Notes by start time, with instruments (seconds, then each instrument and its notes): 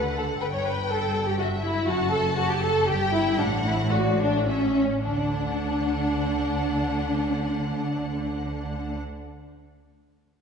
Already playing: double bass section D2, cello section D3, viola section B4, violin section F#5
0.17 violin section A4, viola section A4
0.41 double bass section G1, cello section G2, violin section B4 G5, viola section B4
0.53 viola section C#5, violin section C#5
0.64 violin section B4, viola section B4
0.89 violin section A4, viola section A4
1.27 violin section G4, viola section G4
1.38 violin section F#4 E5, viola section F#4
1.63 violin section E4, viola section E4
1.88 double bass section F#1, cello section F#2, violin section F#4 A5, viola section F#4
2.11 violin section A4, viola section A4
2.36 violin section F#4, viola section F#4
2.49 violin section G4, viola section G4
2.61 violin section A4, viola section A4
2.86 double bass section G1, cello section G2, violin section G4 G5, viola section G4
3.13 violin section E4, viola section E4
3.39 double bass section A1, cello section A2, violin section D4 F#5, viola section D4
3.66 viola section E4, violin section E4
3.91 violin section F#4 D5, viola section F#4
4.20 violin section D4, viola section D4
4.46 violin section C#4 E5, viola section C#4
5.04 double bass section D2, cello section D3, violin section D4 F#5, viola section D4